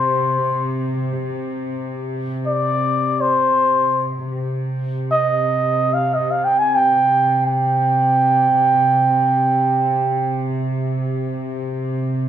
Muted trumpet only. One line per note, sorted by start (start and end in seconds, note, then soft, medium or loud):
0.00 0.77 C5 medium
2.47 3.22 D5 medium
3.21 4.06 C5 medium
5.11 5.95 D#5 medium
5.94 6.16 F5 medium
6.14 6.32 D#5 medium
6.31 6.46 F5 medium
6.45 6.60 G5 medium
6.59 6.77 G#5 medium
6.75 7.46 G5 medium
7.47 10.49 G5 medium